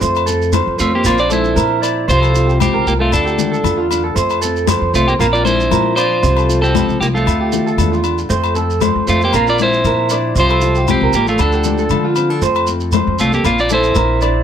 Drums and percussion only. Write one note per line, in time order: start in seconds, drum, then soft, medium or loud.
0.02 muted conga soft
0.02 shekere loud
0.15 low agogo medium
0.15 shekere soft
0.27 muted conga soft
0.27 shekere medium
0.42 shekere soft
0.53 high conga medium
0.53 low agogo medium
0.53 shekere medium
0.79 shekere medium
1.04 muted conga soft
1.04 low agogo medium
1.04 shekere medium
1.18 shekere soft
1.30 high conga medium
1.30 shekere medium
1.44 shekere soft
1.57 high conga medium
1.57 low agogo medium
1.57 shekere medium
1.83 muted conga soft
1.83 low agogo medium
1.83 shekere medium
2.10 muted conga soft
2.10 shekere loud
2.23 low agogo medium
2.23 shekere soft
2.35 muted conga soft
2.35 shekere medium
2.49 shekere soft
2.60 high conga medium
2.60 low agogo medium
2.60 shekere loud
2.87 shekere medium
3.12 muted conga soft
3.12 low agogo medium
3.12 shekere medium
3.27 shekere soft
3.39 high conga medium
3.39 low conga medium
3.39 shekere medium
3.54 shekere soft
3.64 high conga medium
3.64 low agogo medium
3.64 shekere medium
3.91 muted conga soft
3.91 low agogo medium
3.91 shekere medium
4.17 muted conga soft
4.17 shekere loud
4.30 low agogo medium
4.30 shekere soft
4.42 muted conga soft
4.42 shekere medium
4.56 shekere soft
4.67 high conga loud
4.67 low agogo medium
4.67 shekere loud
4.94 shekere medium
5.08 shekere soft
5.20 muted conga soft
5.20 low agogo medium
5.20 shekere medium
5.34 shekere soft
5.45 high conga medium
5.45 shekere medium
5.60 shekere soft
5.71 high conga medium
5.71 low agogo medium
5.71 shekere medium
5.97 low agogo medium
5.97 shekere medium
6.24 muted conga soft
6.24 shekere loud
6.37 low agogo medium
6.37 shekere soft
6.50 muted conga soft
6.50 shekere medium
6.64 shekere soft
6.75 high conga loud
6.75 low agogo medium
6.75 shekere medium
6.89 shekere soft
7.02 shekere medium
7.16 shekere soft
7.27 muted conga soft
7.27 low agogo medium
7.27 shekere medium
7.52 high conga medium
7.52 low conga medium
7.52 shekere medium
7.68 shekere soft
7.78 high conga medium
7.78 low conga medium
7.78 low agogo medium
7.78 shekere medium
7.93 shekere soft
8.04 muted conga soft
8.04 low agogo medium
8.04 shekere medium
8.18 shekere soft
8.30 muted conga soft
8.30 shekere medium
8.44 low agogo medium
8.44 shekere soft
8.56 muted conga soft
8.56 shekere medium
8.70 shekere soft
8.81 high conga medium
8.81 low agogo medium
8.81 shekere medium
9.08 shekere medium
9.21 shekere soft
9.33 muted conga soft
9.33 low agogo medium
9.33 shekere medium
9.47 shekere soft
9.59 high conga medium
9.59 shekere medium
9.73 shekere soft
9.85 high conga medium
9.85 low agogo medium
9.85 shekere medium
10.10 muted conga soft
10.10 low agogo medium
10.10 shekere medium
10.36 muted conga soft
10.36 shekere medium
10.49 low agogo medium
10.49 shekere soft
10.61 muted conga soft
10.61 shekere medium
10.75 shekere soft
10.88 high conga medium
10.88 low agogo medium
10.88 shekere medium
11.13 shekere medium
11.27 shekere soft
11.39 muted conga soft
11.39 low agogo medium
11.39 shekere medium
11.52 shekere soft
11.64 high conga medium
11.64 low conga medium
11.64 shekere medium
11.78 shekere soft
11.90 high conga medium
11.90 low agogo medium
11.90 shekere medium
12.16 muted conga soft
12.16 low agogo medium
12.16 shekere medium
12.42 muted conga soft
12.42 shekere medium
12.55 low agogo medium
12.55 shekere soft
12.67 muted conga soft
12.67 shekere medium
12.80 shekere soft
12.92 high conga medium
12.92 low agogo medium
12.92 shekere medium
13.19 shekere medium
13.33 shekere soft
13.45 muted conga soft
13.45 low agogo medium
13.45 shekere medium
13.59 shekere soft
13.69 high conga medium
13.69 shekere medium
13.83 shekere soft
13.95 high conga medium
13.95 low agogo medium
13.95 shekere medium
14.21 muted conga soft
14.21 low agogo medium
14.21 shekere medium